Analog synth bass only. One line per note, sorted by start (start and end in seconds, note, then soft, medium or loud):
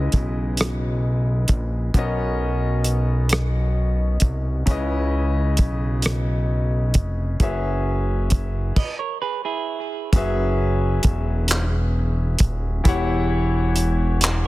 0.14 1.46 B1 medium
1.50 1.91 A#1 medium
1.95 4.18 B1 loud
4.22 4.64 C2 medium
4.68 5.61 C#2 loud
5.59 6.97 B1 medium
6.96 7.37 F1 medium
7.40 8.73 F#1 loud
10.14 11.00 F#1 loud
11.05 12.37 E1 loud
12.41 12.82 D#1 medium
12.86 14.47 E1 loud